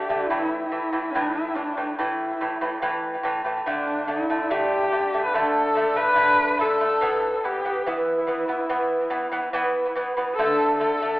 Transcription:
Already playing: horsehead fiddle G4
0.09 lute D3 A3
0.27 lute A2 E3, horsehead fiddle E4
0.68 lute A2 E3, horsehead fiddle E4
0.93 lute A2 E3
1.10 horsehead fiddle D4
1.15 lute A2 E3
1.32 horsehead fiddle E4
1.55 lute A2 E3, horsehead fiddle D4
1.77 lute A2 E3
1.98 lute A2 E3, horsehead fiddle E4
2.41 lute A2 E3
2.61 lute A2 E3
2.82 lute A2 E3
3.23 lute A2 E3
3.45 lute A2 E3
3.66 lute D3 A3, horsehead fiddle D4
4.07 lute D3 A3, horsehead fiddle E4
4.30 lute D3 A3
4.50 lute D3 A3, horsehead fiddle G4
4.92 lute D3 A3
5.14 lute D3 A3
5.25 horsehead fiddle B4
5.34 lute D3 A3, horsehead fiddle A4
5.75 lute D3 A3
5.96 lute D3 A3, horsehead fiddle B4
6.16 lute D3 A3
6.58 lute D3 A3, horsehead fiddle A4
6.80 lute D3 A3
7.01 lute E3 B3
7.36 horsehead fiddle A4
7.44 lute E3 B3, horsehead fiddle G4
7.65 lute E3 B3
7.86 lute E3 B3, horsehead fiddle E4
8.27 lute E3 B3
8.48 lute E3 B3
8.69 lute E3 B3
9.10 lute E3 B3
9.32 lute E3 B3
9.53 lute E3 B3
9.96 lute E3 B3
10.17 lute E3 B3
10.35 horsehead fiddle A4
10.39 lute D3 A3
10.77 lute D3 A3, horsehead fiddle A4
11.02 lute D3 A3

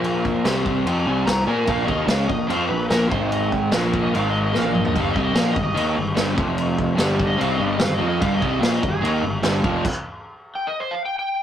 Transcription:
Already playing: picked electric bass A#1, overdriven electric guitar A#2 F3 A#3, transistor combo organ A#3 F4 A#4, electric slide guitar C5
0.04 crash
0.25 kick
0.44 picked electric bass C2, overdriven electric guitar C3 G3 C4, transistor combo organ C4 G4 C5, snare, crash
0.66 kick
0.86 picked electric bass F2, overdriven electric guitar F3 C4 F4, crash
1.06 picked electric bass C2, overdriven electric guitar C3 G3 C4, electric slide guitar G#5
1.26 picked electric bass C2, overdriven electric guitar C3 G3, electric slide guitar A#5, snare, crash
1.47 picked electric bass A#2, overdriven electric guitar A#3 F4 A#4, electric slide guitar G#5
1.65 picked electric bass A#1, overdriven electric guitar A#2 F3 A#3, transistor combo organ A#3 F4 A#4, electric slide guitar F5, kick, crash
1.85 picked electric bass D#2, overdriven electric guitar D#3 A#3 D#4, electric slide guitar D#5, kick
2.06 picked electric bass C#2, overdriven electric guitar C#3 G#3 C#4, electric slide guitar F5, snare, crash
2.28 picked electric bass A#1, overdriven electric guitar A#2 F3, electric slide guitar D#5, kick
2.47 picked electric bass F2, overdriven electric guitar F3 C4 F4, electric slide guitar C5, crash
2.68 picked electric bass A#1, overdriven electric guitar A#2 F3, electric slide guitar B4
2.89 picked electric bass A#1, overdriven electric guitar A#2 F3 A#3, electric slide guitar A#4, snare, crash
3.10 picked electric bass G#1, overdriven electric guitar G#2 D#3 G#3, transistor combo organ D#4 G#4, electric slide guitar C5, kick
3.15 transistor combo organ D#5
3.29 electric slide guitar D#5, crash
3.52 kick
3.71 picked electric bass A#1, overdriven electric guitar A#2 F3 A#3, transistor combo organ F4 A#4, snare, crash
3.76 transistor combo organ F5
3.94 kick
4.03 electric slide guitar D#5
4.13 picked electric bass G#1, overdriven electric guitar G#2 D#3 G#3, transistor combo organ D#4 G#4 D#5, electric slide guitar F5, crash
4.30 electric slide guitar D#5
4.43 electric slide guitar D#5
4.53 picked electric bass A#1, overdriven electric guitar A#2 F3 A#3, transistor combo organ F4 A#4, snare
4.58 transistor combo organ F5, electric slide guitar F5
4.64 high tom
4.73 electric slide guitar D#5, mid tom
4.85 electric slide guitar D#5, floor tom
4.93 picked electric bass G1, overdriven electric guitar G2 D3, transistor combo organ D#4 G#4 D#5, kick, crash
4.97 overdriven electric guitar G3, electric slide guitar F5
5.10 electric slide guitar D#5
5.14 picked electric bass C2, overdriven electric guitar C3 G3 C4, kick
5.24 electric slide guitar D#5
5.34 picked electric bass A#1, overdriven electric guitar A#2 F3 A#3, electric slide guitar F5, snare, crash
5.52 overdriven electric guitar G#2 D#3, electric slide guitar D#5
5.56 picked electric bass G1, kick
5.63 electric slide guitar D#5
5.75 picked electric bass D#2, overdriven electric guitar D#3 A#3 D#4, crash
5.95 picked electric bass G1, overdriven electric guitar G#2 D#3
6.15 picked electric bass G1, overdriven electric guitar G2 D3 G3, snare, crash
6.36 picked electric bass F1, overdriven electric guitar F2 C3 F3, transistor combo organ C4 F4 C5, kick
6.58 crash
6.79 kick
6.95 picked electric bass G1, overdriven electric guitar G2 D3 G3, snare, crash
7.01 transistor combo organ D4 G4 D5
7.20 kick
7.27 electric slide guitar D#5
7.38 picked electric bass C2, overdriven electric guitar C3 G3 C4, transistor combo organ D#4, electric slide guitar F5, crash
7.42 transistor combo organ G#4 D#5
7.53 electric slide guitar D#5
7.57 picked electric bass G1, overdriven electric guitar G2 D3 G3
7.68 electric slide guitar D#5
7.78 picked electric bass G1, overdriven electric guitar G#2 D#3, snare, crash
7.84 electric slide guitar F5
7.94 electric slide guitar D#5
7.98 picked electric bass F2, overdriven electric guitar F3 C4 F4
8.08 electric slide guitar D#5
8.20 picked electric bass G1, overdriven electric guitar G2 D3 G3, electric slide guitar F5, kick, crash
8.33 electric slide guitar D#5
8.40 picked electric bass C2, overdriven electric guitar C3 G3 C4, kick
8.48 electric slide guitar D#5
8.59 picked electric bass A#1, overdriven electric guitar A#2 F3 A#3, electric slide guitar F5
8.63 snare, crash
8.74 electric slide guitar D#5
8.82 picked electric bass G1, overdriven electric guitar G#2 D#3, kick
8.88 electric slide guitar G#4
9.01 picked electric bass D#2, overdriven electric guitar D#3 A#3 D#4, crash
9.23 picked electric bass G1, overdriven electric guitar G#2 D#3
9.43 picked electric bass G1, overdriven electric guitar G2 D3 G3, snare, crash
9.64 picked electric bass F1, overdriven electric guitar F2 C3 F3, kick
9.85 kick, crash
10.55 electric slide guitar G5
10.67 electric slide guitar D#5
10.80 electric slide guitar C5
10.91 electric slide guitar F5
11.05 electric slide guitar G5
11.19 electric slide guitar G5

